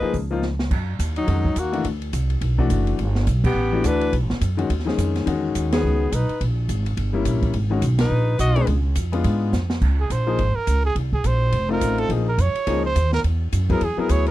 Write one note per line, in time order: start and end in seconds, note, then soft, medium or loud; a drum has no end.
0.00 0.12 F3 medium
0.00 0.13 A#3 medium
0.00 0.13 D#4 medium
0.00 0.13 G#4 medium
0.00 0.15 B4 medium
0.00 0.14 D#5 medium
0.00 muted upright bass stroke soft
0.13 0.68 C#2 medium
0.13 kick soft
0.13 open hi-hat soft
0.31 0.41 F3 medium
0.31 0.41 A#3 medium
0.31 0.42 D#4 medium
0.31 0.42 F4 medium
0.42 snare soft
0.59 snare medium
0.71 0.98 F#2 medium
0.71 kick medium
0.71 crash medium
0.99 1.27 D#2 medium
0.99 kick soft
0.99 hi-hat pedal medium
0.99 ride medium
1.16 1.59 F#3 medium
1.16 1.61 D#4 medium
1.16 ride soft
1.27 1.55 F2 medium
1.27 1.43 D#3 medium
1.27 1.43 G#3 soft
1.27 1.43 C#4 soft
1.27 1.43 F#4 medium
1.27 kick soft
1.27 ride medium
1.45 kick soft
1.56 1.83 D#2 medium
1.56 1.86 A#3 medium
1.56 1.86 F#4 medium
1.56 kick soft
1.56 hi-hat pedal medium
1.56 ride medium
1.72 1.83 E3 medium
1.72 1.83 A3 medium
1.72 1.84 D4 medium
1.72 1.84 F#4 medium
1.72 ride soft
1.84 2.12 D2 medium
1.84 kick soft
1.84 ride medium
2.02 ride soft
2.13 2.41 C2 medium
2.13 kick soft
2.13 hi-hat pedal medium
2.13 ride medium
2.30 ride soft
2.41 2.69 B1 medium
2.41 kick soft
2.41 ride medium
2.58 2.96 E3 medium
2.58 2.96 A3 medium
2.58 2.96 D4 medium
2.58 2.97 F#4 medium
2.58 kick soft
2.70 2.98 F#1 medium
2.70 kick soft
2.70 hi-hat pedal medium
2.70 ride medium
2.87 ride soft
2.98 3.26 G1 medium
2.98 kick soft
2.98 ride medium
3.15 snare soft
3.27 3.53 B1 medium
3.27 kick soft
3.27 hi-hat pedal medium
3.27 ride medium
3.44 3.87 B3 medium
3.44 3.88 G4 medium
3.44 kick medium
3.44 crash medium
3.54 3.82 A1 medium
3.72 4.10 E3 medium
3.72 4.10 A3 medium
3.72 4.11 D4 medium
3.72 4.11 F#4 medium
3.84 4.12 D2 medium
3.84 4.13 D4 medium
3.84 4.14 B4 medium
3.84 kick soft
3.84 hi-hat pedal medium
3.84 ride medium
4.01 ride soft
4.12 4.22 B1 medium
4.12 kick soft
4.12 ride medium
4.22 4.31 A1 medium
4.30 4.40 F#1 medium
4.30 snare medium
4.41 4.69 F#2 medium
4.41 kick soft
4.41 hi-hat pedal medium
4.41 ride medium
4.57 4.68 D#3 medium
4.57 4.68 G#3 medium
4.57 4.68 C#4 medium
4.57 4.69 F#4 medium
4.57 ride soft
4.70 4.97 D#2 medium
4.70 kick soft
4.70 ride medium
4.80 snare soft
4.85 5.24 D#3 medium
4.85 5.24 G#3 medium
4.85 5.24 C#4 medium
4.85 5.25 G#4 medium
4.85 snare soft
4.98 5.25 F2 medium
4.98 kick soft
4.98 hi-hat pedal medium
4.98 ride medium
5.16 snare soft
5.16 ride soft
5.26 5.54 E2 medium
5.26 6.05 D#3 medium
5.26 6.05 G#3 medium
5.26 6.05 C#4 medium
5.26 6.05 F#4 medium
5.26 kick soft
5.26 ride medium
5.55 5.83 D#2 medium
5.55 kick soft
5.55 hi-hat pedal soft
5.55 ride medium
5.72 6.14 B3 medium
5.72 6.16 G#4 medium
5.72 snare medium
5.72 ride medium
5.84 6.11 C#2 medium
6.12 6.28 B1 medium
6.12 6.41 D#4 medium
6.12 6.42 B4 medium
6.12 kick soft
6.12 hi-hat pedal medium
6.12 ride medium
6.29 muted upright bass stroke soft
6.29 ride soft
6.41 6.68 A#1 medium
6.41 kick soft
6.41 ride medium
6.68 6.96 G#1 medium
6.68 kick soft
6.68 hi-hat pedal medium
6.68 ride medium
6.86 ride medium
6.97 7.25 G1 medium
6.97 kick soft
6.97 ride medium
7.13 7.51 G3 medium
7.13 7.52 A#3 medium
7.13 7.52 C#4 medium
7.13 7.52 E4 medium
7.25 7.53 A#1 medium
7.25 kick soft
7.25 hi-hat pedal medium
7.25 ride medium
7.42 kick medium
7.42 ride soft
7.54 7.81 G#1 medium
7.54 kick soft
7.54 ride medium
7.70 7.81 D#3 medium
7.70 7.81 G#3 medium
7.70 7.82 C#4 medium
7.70 7.82 F#4 medium
7.82 8.09 B1 medium
7.82 kick soft
7.82 hi-hat pedal medium
7.82 ride medium
7.99 8.36 D#4 medium
7.99 8.37 B4 medium
7.99 snare medium
7.99 ride medium
8.10 8.38 A#1 medium
8.39 8.66 B1 medium
8.39 8.66 F#4 medium
8.39 8.66 D#5 medium
8.39 kick soft
8.39 hi-hat pedal medium
8.39 ride medium
8.56 8.67 G#3 medium
8.56 8.67 B3 medium
8.56 8.67 D4 medium
8.56 8.67 G#4 medium
8.56 ride soft
8.67 8.95 C#2 medium
8.67 kick soft
8.67 ride medium
8.95 9.24 F2 medium
8.95 kick soft
8.95 hi-hat pedal medium
8.95 ride medium
9.12 9.50 G#3 medium
9.12 9.51 B3 medium
9.12 9.51 D4 medium
9.12 9.51 F4 medium
9.12 ride soft
9.24 9.52 G#2 medium
9.24 kick soft
9.24 ride medium
9.53 9.80 F2 medium
9.53 snare medium
9.53 hi-hat pedal soft
9.70 snare medium
9.81 10.09 C#2 medium
9.81 kick medium
9.81 crash medium
10.00 10.13 G#4 medium
10.10 10.38 A#1 medium
10.10 10.57 C5 medium
10.10 kick soft
10.10 hi-hat pedal soft
10.10 ride medium
10.27 10.37 F3 medium
10.27 10.37 A#3 medium
10.27 10.38 D#4 medium
10.27 10.38 G#4 medium
10.39 10.54 G#1 medium
10.39 kick soft
10.39 ride medium
10.55 10.84 A#4 medium
10.55 muted upright bass stroke soft
10.67 10.95 C#2 medium
10.67 kick soft
10.67 hi-hat pedal soft
10.67 ride medium
10.85 10.95 G#4 medium
10.95 11.23 C2 medium
10.95 kick soft
10.95 ride medium
11.13 11.28 G#4 medium
11.13 kick soft
11.24 11.52 A#1 medium
11.24 11.71 C5 medium
11.24 kick soft
11.24 hi-hat pedal medium
11.24 ride medium
11.52 11.80 F1 medium
11.52 kick soft
11.52 ride medium
11.69 12.07 A3 medium
11.69 12.07 C4 medium
11.69 12.08 D#4 medium
11.69 12.08 F4 medium
11.69 12.01 A#4 medium
11.81 12.09 A1 medium
11.81 kick soft
11.81 hi-hat pedal medium
11.81 ride medium
11.98 12.10 A4 medium
11.98 ride soft
12.09 12.37 A#1 medium
12.09 12.25 F3 medium
12.09 12.25 A#3 medium
12.09 12.25 D#4 medium
12.09 12.25 G#4 medium
12.09 kick soft
12.09 ride medium
12.29 12.42 A#4 medium
12.38 12.54 F2 medium
12.38 12.84 C#5 medium
12.38 kick soft
12.38 hi-hat pedal soft
12.38 ride medium
12.55 muted upright bass stroke soft
12.55 ride soft
12.67 12.94 C#2 medium
12.67 12.82 F3 medium
12.67 12.82 A#3 medium
12.67 12.82 D#4 medium
12.67 12.82 G#4 medium
12.67 kick soft
12.67 ride medium
12.85 13.11 C5 medium
12.95 13.23 D#2 medium
12.95 kick soft
12.95 hi-hat pedal medium
12.95 ride medium
13.12 13.20 A#4 medium
13.12 snare medium
13.24 13.51 E2 medium
13.24 kick soft
13.24 ride medium
13.52 13.80 F#2 medium
13.52 kick soft
13.52 hi-hat pedal medium
13.52 ride medium
13.70 13.80 F#3 medium
13.70 13.80 B3 medium
13.70 13.80 E4 medium
13.70 13.80 G#4 medium
13.70 13.86 A#4 medium
13.70 kick medium
13.70 ride soft
13.81 13.96 E2 medium
13.81 14.01 G#4 medium
13.81 kick soft
13.81 ride medium
13.97 14.31 F#3 medium
13.97 14.31 B3 medium
13.97 14.31 E4 medium
13.97 14.31 G#4 medium
13.97 14.12 A#4 medium
13.97 muted upright bass stroke soft
14.09 14.31 D2 medium
14.09 14.27 C#5 medium
14.09 kick soft
14.09 hi-hat pedal medium
14.09 ride medium
14.26 14.31 A#4 medium
14.26 ride soft